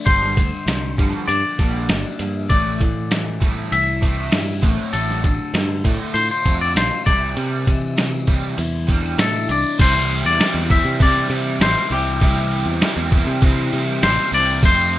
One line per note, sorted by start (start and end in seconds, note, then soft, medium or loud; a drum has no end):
0.05 0.35 G1 medium
0.05 0.34 G2 medium
0.05 0.35 D3 medium
0.05 0.35 G3 medium
0.05 0.93 C5 loud
0.05 kick medium
0.05 closed hi-hat medium
0.22 snare soft
0.37 0.51 D2 medium
0.37 0.64 G2 medium
0.37 0.65 D3 medium
0.37 kick medium
0.37 closed hi-hat medium
0.67 0.96 C2 medium
0.67 0.95 G2 medium
0.67 0.95 D3 medium
0.67 snare loud
0.67 closed hi-hat medium
0.98 1.26 G2 medium
0.98 1.12 G2 medium
0.98 1.27 D3 medium
0.98 2.50 F3 medium
0.98 1.27 G3 medium
0.98 kick medium
0.98 closed hi-hat medium
1.28 1.43 G2 medium
1.28 1.56 G2 medium
1.28 1.56 D3 medium
1.28 1.89 D4 medium
1.28 2.46 D5 loud
1.28 closed hi-hat medium
1.59 1.88 A#1 medium
1.59 1.88 G2 medium
1.59 1.88 D3 medium
1.59 1.88 G3 loud
1.59 2.18 A#3 medium
1.59 kick medium
1.59 closed hi-hat medium
1.89 2.03 G1 medium
1.89 2.17 G2 medium
1.89 2.17 D3 medium
1.89 2.50 D4 medium
1.89 snare loud
1.89 closed hi-hat medium
2.19 2.48 G2 medium
2.19 2.47 G2 medium
2.19 2.48 D3 medium
2.19 2.50 A#3 medium
2.19 closed hi-hat medium
2.49 2.79 A1 medium
2.49 2.79 A2 medium
2.49 2.79 E3 medium
2.49 2.79 A3 loud
2.49 3.37 D5 medium
2.49 kick loud
2.49 closed hi-hat medium
2.81 3.08 A2 medium
2.81 3.68 A2 medium
2.81 3.08 E3 medium
2.81 kick medium
2.81 closed hi-hat medium
3.11 3.38 A2 medium
3.11 3.38 E3 medium
3.11 snare loud
3.11 closed hi-hat medium
3.40 3.69 A2 medium
3.40 3.69 E3 medium
3.40 4.63 G3 medium
3.40 3.70 A3 medium
3.40 kick medium
3.40 closed hi-hat medium
3.72 4.29 C2 medium
3.72 3.99 A2 medium
3.72 3.99 E3 medium
3.72 4.31 E4 medium
3.72 4.89 E5 loud
3.72 closed hi-hat medium
4.01 4.30 A2 medium
4.01 4.30 E3 loud
4.01 4.30 A3 loud
4.01 5.26 C4 medium
4.01 kick medium
4.01 closed hi-hat medium
4.32 4.61 G2 medium
4.32 4.59 A2 medium
4.32 4.60 E3 medium
4.32 4.63 E4 medium
4.32 snare loud
4.32 closed hi-hat medium
4.62 4.77 A1 loud
4.62 4.91 A2 medium
4.62 4.91 D3 medium
4.62 4.91 A3 medium
4.62 kick loud
4.62 closed hi-hat medium
4.92 5.22 A1 loud
4.92 5.21 A2 medium
4.92 5.22 D3 medium
4.92 5.22 A3 medium
4.92 6.11 A4 medium
4.92 closed hi-hat medium
5.10 snare soft
5.23 5.38 A1 medium
5.23 5.51 A2 medium
5.23 5.51 D3 medium
5.23 kick medium
5.23 closed hi-hat medium
5.54 5.82 G2 loud
5.54 5.81 A2 medium
5.54 5.81 D3 medium
5.54 snare loud
5.54 closed hi-hat medium
5.84 6.13 A2 medium
5.84 5.99 A2 medium
5.84 6.13 D3 medium
5.84 6.13 A3 medium
5.84 kick medium
5.84 closed hi-hat medium
6.14 6.29 A2 medium
6.14 6.42 A2 medium
6.14 6.42 D3 medium
6.14 6.75 F4 medium
6.14 6.30 C5 medium
6.14 closed hi-hat medium
6.31 6.61 C5 medium
6.45 6.74 F2 medium
6.45 6.73 A2 medium
6.45 6.74 D3 loud
6.45 6.74 A3 loud
6.45 8.88 C4 medium
6.45 kick medium
6.45 closed hi-hat medium
6.61 6.76 D5 medium
6.75 6.90 A#1 medium
6.75 7.02 A2 medium
6.75 7.03 D3 medium
6.75 7.06 F4 medium
6.75 7.06 C5 medium
6.75 snare loud
6.75 closed hi-hat medium
7.05 7.35 C2 medium
7.05 7.34 C3 medium
7.05 7.35 E3 medium
7.05 7.35 G3 medium
7.05 9.45 D5 medium
7.05 kick loud
7.05 closed hi-hat medium
7.36 7.65 C3 medium
7.36 7.65 C3 loud
7.36 7.65 E3 medium
7.36 7.65 G3 loud
7.36 closed hi-hat medium
7.66 7.94 C3 medium
7.66 8.54 C3 medium
7.66 7.94 E3 medium
7.66 kick medium
7.66 closed hi-hat medium
7.97 8.24 C3 medium
7.97 8.25 E3 medium
7.97 snare loud
7.97 closed hi-hat medium
8.27 8.56 C3 medium
8.27 8.56 E3 medium
8.27 8.56 G3 medium
8.27 kick medium
8.27 closed hi-hat medium
8.57 9.15 E2 medium
8.57 8.85 C3 medium
8.57 8.85 E3 medium
8.57 9.18 E4 medium
8.57 closed hi-hat medium
8.87 9.16 C3 loud
8.87 9.16 E3 loud
8.87 9.16 G3 loud
8.87 9.48 D4 medium
8.87 kick medium
8.87 closed hi-hat medium
9.18 9.47 A2 medium
9.18 9.45 C3 medium
9.18 9.46 E3 medium
9.18 9.79 E4 medium
9.18 9.51 A4 medium
9.18 snare loud
9.18 closed hi-hat medium
9.48 9.63 C2 medium
9.48 9.76 C3 medium
9.48 9.76 E3 medium
9.48 9.79 D4 medium
9.48 9.81 D5 medium
9.48 closed hi-hat medium
9.78 10.22 C2 loud
9.78 10.39 C3 medium
9.78 10.39 E3 loud
9.78 10.40 G3 loud
9.78 10.40 C4 loud
9.78 10.40 E4 loud
9.78 10.26 C5 loud
9.78 kick loud
9.78 crash loud
9.78 crash medium
10.09 crash medium
10.25 10.39 E2 medium
10.25 10.68 D5 loud
10.39 10.69 C3 medium
10.39 10.70 E3 medium
10.39 10.70 G3 medium
10.39 10.70 C4 medium
10.39 10.70 E4 medium
10.39 snare loud
10.39 crash loud
10.54 10.83 E2 medium
10.69 10.98 C3 medium
10.69 11.00 E3 medium
10.69 11.00 G3 loud
10.69 11.00 C4 medium
10.69 11.01 E4 loud
10.69 11.02 E5 loud
10.69 kick loud
10.69 crash medium
10.85 11.28 C3 loud
11.00 11.59 C3 loud
11.00 11.60 E3 loud
11.00 11.60 G3 loud
11.00 11.61 C4 loud
11.00 11.61 E4 loud
11.00 11.58 D5 loud
11.00 kick loud
11.00 crash medium
11.30 11.61 C3 loud
11.30 crash medium
11.60 11.74 A1 loud
11.60 11.89 C3 medium
11.60 11.90 E3 medium
11.60 11.90 G3 medium
11.60 11.91 C4 medium
11.60 11.91 E4 loud
11.60 11.89 C5 medium
11.60 snare loud
11.60 crash loud
11.90 12.19 C2 medium
11.90 12.20 C3 medium
11.90 12.21 E3 loud
11.90 12.20 G3 medium
11.90 12.21 C4 medium
11.90 12.22 E4 loud
11.90 13.69 G4 medium
11.90 crash medium
12.21 12.64 C2 loud
12.21 12.80 C3 medium
12.21 12.81 E3 loud
12.21 12.81 G3 loud
12.21 12.82 C4 loud
12.21 12.82 E4 loud
12.21 kick loud
12.21 crash medium
12.51 crash medium
12.66 12.80 E2 medium
12.81 13.10 C3 medium
12.81 13.11 E3 medium
12.81 13.11 G3 medium
12.81 13.11 C4 medium
12.81 13.12 E4 loud
12.81 snare loud
12.81 crash medium
12.97 13.25 E2 loud
13.11 13.40 C3 medium
13.11 13.42 E3 medium
13.11 13.42 G3 medium
13.11 13.42 C4 loud
13.11 13.43 E4 medium
13.11 kick loud
13.11 crash medium
13.27 13.69 C3 loud
13.42 14.02 C3 loud
13.42 14.03 E3 loud
13.42 14.03 G3 loud
13.42 14.03 C4 loud
13.42 14.04 E4 loud
13.42 kick loud
13.42 crash medium
13.72 14.04 C3 loud
13.72 crash medium
14.02 14.17 A1 loud
14.02 14.31 C3 medium
14.02 14.32 E3 medium
14.02 14.32 G3 medium
14.02 14.33 C4 medium
14.02 14.34 E4 loud
14.02 14.34 C5 loud
14.02 snare loud
14.02 crash medium
14.32 14.61 C2 medium
14.32 14.61 C3 medium
14.32 14.63 E3 medium
14.32 14.61 G3 loud
14.32 14.64 C4 medium
14.32 14.64 E4 medium
14.32 14.64 D5 loud
14.32 crash medium
14.63 14.99 F2 loud
14.63 14.99 C3 loud
14.63 14.99 F3 loud
14.63 14.99 A3 loud
14.63 14.99 C4 loud
14.63 14.99 F4 loud
14.63 14.99 C5 loud
14.63 kick loud
14.63 crash medium
14.93 crash medium